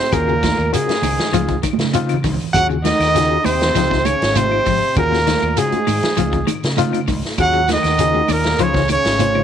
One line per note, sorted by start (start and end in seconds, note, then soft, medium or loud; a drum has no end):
0.00 0.17 C3 medium
0.00 0.16 C4 medium
0.00 0.15 C5 medium
0.12 0.50 D#2 loud
0.12 0.73 A#2 medium
0.12 0.74 A#3 medium
0.12 0.34 C#4 medium
0.12 0.34 F4 medium
0.12 0.34 F#4 medium
0.12 0.34 G#4 medium
0.12 0.73 A#4 loud
0.12 kick medium
0.12 closed hi-hat medium
0.12 low conga medium
0.12 claves medium
0.12 shekere loud
0.28 0.36 C#3 medium
0.28 shekere soft
0.43 0.59 D#3 medium
0.43 kick medium
0.43 snare medium
0.43 closed hi-hat medium
0.43 high conga medium
0.43 shekere medium
0.58 0.70 D#2 loud
0.58 claves medium
0.58 shekere soft
0.72 1.60 G#2 medium
0.72 0.89 C#3 medium
0.72 1.61 G#3 medium
0.72 0.94 C#4 medium
0.72 0.94 F4 medium
0.72 0.94 F#4 medium
0.72 1.60 G#4 medium
0.72 0.95 A#4 medium
0.72 closed hi-hat medium
0.72 shekere medium
0.88 muted fingered electric bass stroke soft
0.88 snare medium
0.88 closed hi-hat soft
0.88 shekere soft
1.02 1.15 C#2 medium
1.02 1.19 D#3 medium
1.02 open hi-hat medium
1.02 high conga medium
1.02 claves medium
1.02 shekere medium
1.18 snare medium
1.18 closed hi-hat soft
1.18 low conga medium
1.18 shekere soft
1.32 1.57 C#2 medium
1.32 1.41 F3 loud
1.32 1.55 C4 medium
1.32 1.55 D#4 medium
1.32 1.55 F4 medium
1.32 closed hi-hat medium
1.32 high conga medium
1.32 shekere medium
1.48 1.56 C#3 medium
1.48 kick medium
1.48 closed hi-hat soft
1.48 low conga medium
1.48 shekere soft
1.63 1.79 D#3 medium
1.63 kick medium
1.63 closed hi-hat medium
1.63 high conga medium
1.63 claves medium
1.63 shekere medium
1.73 high conga loud
1.78 2.26 C#3 medium
1.78 snare medium
1.78 closed hi-hat soft
1.78 shekere soft
1.84 high conga loud
1.93 2.02 C3 medium
1.93 2.16 C4 medium
1.93 2.16 D#4 medium
1.93 2.16 F4 loud
1.93 closed hi-hat medium
1.93 low conga loud
1.93 shekere loud
2.09 2.17 C#3 medium
2.09 closed hi-hat soft
2.09 claves medium
2.09 shekere soft
2.14 low conga loud
2.24 2.37 C#2 loud
2.24 2.40 D#3 medium
2.24 kick medium
2.24 open hi-hat medium
2.24 low conga medium
2.24 shekere medium
2.34 low conga loud
2.41 low conga medium
2.41 shekere soft
2.53 2.91 D#2 loud
2.53 2.68 F#3 medium
2.53 2.77 C#4 medium
2.53 2.77 F4 medium
2.53 2.68 F#4 loud
2.53 2.77 F#4 medium
2.53 2.77 G#4 medium
2.53 2.67 F#5 loud
2.53 kick loud
2.53 closed hi-hat medium
2.53 low conga medium
2.53 claves medium
2.53 shekere loud
2.69 2.77 C#3 medium
2.69 shekere soft
2.84 3.00 D#3 medium
2.84 3.46 D#3 medium
2.84 3.48 D#4 loud
2.84 3.47 D#5 loud
2.84 snare medium
2.84 closed hi-hat medium
2.84 high conga medium
2.84 shekere medium
3.00 3.36 D#2 loud
3.00 snare soft
3.00 closed hi-hat soft
3.00 claves medium
3.00 shekere soft
3.15 3.30 C#3 medium
3.15 3.37 C#4 medium
3.15 3.37 F4 medium
3.15 3.37 F#4 medium
3.15 3.37 G#4 medium
3.15 snare soft
3.15 closed hi-hat medium
3.15 shekere loud
3.31 shekere soft
3.44 3.70 D#2 medium
3.44 4.08 C3 medium
3.44 3.60 D#3 medium
3.44 4.09 C4 medium
3.44 4.07 C5 loud
3.44 open hi-hat medium
3.44 high conga loud
3.44 claves medium
3.44 shekere medium
3.60 snare medium
3.60 closed hi-hat soft
3.60 low conga medium
3.60 shekere soft
3.75 4.12 C#2 medium
3.75 3.83 F3 medium
3.75 3.98 D#4 medium
3.75 3.98 F4 medium
3.75 3.98 C5 medium
3.75 snare soft
3.75 closed hi-hat medium
3.75 shekere medium
3.90 3.98 C#3 medium
3.90 kick medium
3.90 snare soft
3.90 low conga medium
3.90 shekere soft
4.05 4.38 C#3 medium
4.05 4.21 D#3 medium
4.05 4.38 C#4 medium
4.05 4.39 C#5 loud
4.05 closed hi-hat medium
4.05 high conga loud
4.05 claves medium
4.05 shekere medium
4.22 4.58 G#1 medium
4.22 snare medium
4.22 closed hi-hat soft
4.22 shekere soft
4.35 4.44 C3 medium
4.35 4.97 C3 medium
4.35 4.97 C4 medium
4.35 4.58 D#4 medium
4.35 4.58 F4 medium
4.35 4.58 C5 medium
4.35 4.97 C5 loud
4.35 closed hi-hat medium
4.35 high conga medium
4.35 shekere loud
4.51 muted clean electric guitar stroke medium
4.51 high conga medium
4.51 claves medium
4.51 shekere soft
4.66 4.79 G#1 loud
4.66 4.82 F3 medium
4.66 kick medium
4.66 open hi-hat medium
4.66 shekere medium
4.82 shekere soft
4.96 5.34 D#2 medium
4.96 5.59 A#2 medium
4.96 5.63 A#3 medium
4.96 5.18 C#4 medium
4.96 5.19 F4 medium
4.96 5.18 F#4 medium
4.96 5.18 G#4 medium
4.96 5.60 A#4 loud
4.96 kick loud
4.96 closed hi-hat medium
4.96 low conga medium
4.96 claves medium
4.96 shekere medium
5.12 5.20 A#2 medium
5.12 snare soft
5.12 shekere soft
5.27 5.42 D#3 medium
5.27 snare medium
5.27 closed hi-hat medium
5.27 high conga medium
5.27 shekere medium
5.42 5.54 D#2 loud
5.42 claves medium
5.42 shekere soft
5.57 6.48 G#2 medium
5.57 5.73 C#3 medium
5.57 5.79 C#4 medium
5.57 5.79 F4 medium
5.57 5.79 F#4 medium
5.57 5.79 G#4 medium
5.57 6.49 G#4 medium
5.57 closed hi-hat medium
5.57 shekere medium
5.61 6.50 G#3 medium
5.72 muted fingered electric bass stroke soft
5.72 closed hi-hat soft
5.72 high conga medium
5.72 shekere soft
5.87 6.00 G#2 loud
5.87 6.02 D#3 medium
5.87 open hi-hat medium
5.87 high conga loud
5.87 claves medium
5.87 shekere medium
6.03 snare medium
6.03 closed hi-hat soft
6.03 low conga medium
6.03 shekere soft
6.17 6.42 C#2 medium
6.17 6.25 F3 medium
6.17 6.40 C4 medium
6.17 6.40 D#4 medium
6.17 6.39 F4 medium
6.17 closed hi-hat medium
6.17 high conga medium
6.17 shekere medium
6.33 6.41 D#3 medium
6.33 kick medium
6.33 closed hi-hat soft
6.33 low conga medium
6.33 shekere soft
6.47 6.63 D#3 medium
6.47 closed hi-hat medium
6.47 high conga loud
6.47 claves medium
6.47 shekere medium
6.63 7.10 C#3 medium
6.63 snare medium
6.63 closed hi-hat soft
6.63 shekere soft
6.77 6.85 C3 medium
6.77 6.99 C4 medium
6.77 6.99 D#4 medium
6.77 7.00 F4 loud
6.77 closed hi-hat medium
6.77 high conga medium
6.77 shekere medium
6.93 7.01 C#3 medium
6.93 closed hi-hat soft
6.93 high conga medium
6.93 claves medium
6.93 shekere soft
7.08 7.21 C#2 loud
7.08 7.23 D#3 medium
7.08 kick medium
7.08 open hi-hat medium
7.08 high conga medium
7.08 shekere medium
7.23 snare soft
7.23 shekere soft
7.38 7.76 D#2 loud
7.38 7.68 F#3 medium
7.38 7.61 C#4 medium
7.38 7.60 F4 medium
7.38 7.60 F#4 medium
7.38 7.68 F#4 loud
7.38 7.61 G#4 medium
7.38 7.68 F#5 loud
7.38 kick medium
7.38 closed hi-hat medium
7.38 low conga medium
7.38 claves medium
7.38 shekere medium
7.54 muted clean electric guitar stroke medium
7.54 shekere soft
7.68 7.84 D#3 medium
7.68 8.31 D#3 medium
7.68 8.33 D#4 medium
7.68 snare medium
7.68 closed hi-hat medium
7.68 high conga medium
7.68 shekere medium
7.72 8.34 D#5 loud
7.83 8.20 D#2 medium
7.83 snare soft
7.83 closed hi-hat soft
7.83 claves medium
7.83 shekere soft
7.98 8.14 C#3 medium
7.98 8.21 C#4 medium
7.98 8.21 F4 medium
7.98 8.21 F#4 medium
7.98 8.21 G#4 medium
7.98 closed hi-hat medium
7.98 shekere medium
8.14 high conga medium
8.14 shekere soft
8.28 8.53 D#2 loud
8.28 8.62 A#2 medium
8.28 8.45 D#3 medium
8.28 8.63 A#3 medium
8.28 8.64 A#4 medium
8.28 open hi-hat medium
8.28 high conga medium
8.28 claves medium
8.28 shekere medium
8.43 snare medium
8.43 closed hi-hat soft
8.43 shekere soft
8.58 8.96 C#2 loud
8.58 8.90 C#3 medium
8.58 8.67 F3 medium
8.58 8.90 C#4 medium
8.58 8.81 D#4 medium
8.58 8.81 F4 medium
8.58 8.81 C5 loud
8.58 closed hi-hat medium
8.58 shekere medium
8.63 8.91 C#5 loud
8.74 8.82 C#3 medium
8.74 kick medium
8.74 snare soft
8.74 low conga medium
8.74 shekere soft
8.88 9.44 C#3 medium
8.88 9.05 D#3 medium
8.88 9.44 C#4 medium
8.88 9.44 C#5 loud
8.88 closed hi-hat medium
8.88 high conga loud
8.88 claves medium
8.88 shekere medium
9.04 9.41 G#1 medium
9.04 snare medium
9.04 closed hi-hat soft
9.04 shekere soft
9.19 9.27 C3 medium
9.19 9.42 D#4 medium
9.19 9.42 F4 medium
9.19 9.42 C5 medium
9.19 closed hi-hat medium
9.19 high conga loud
9.19 shekere medium
9.35 9.43 C#3 medium
9.35 high conga medium
9.35 claves medium
9.35 shekere soft